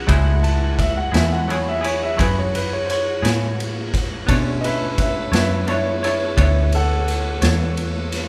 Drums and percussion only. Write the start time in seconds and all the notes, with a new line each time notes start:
0.09 kick, ride
0.44 ride
0.79 kick, snare, ride
1.14 snare, ride
1.50 ride
1.84 ride
2.19 kick, ride
2.55 ride
2.90 ride
3.25 snare, ride
3.60 ride
3.94 kick, snare, ride
4.29 kick, ride
4.64 ride
4.98 kick, snare, ride
5.33 snare, ride
5.68 ride
6.04 ride
6.38 kick, ride
6.72 ride
7.08 ride
7.42 snare, ride
7.77 ride
8.12 snare, ride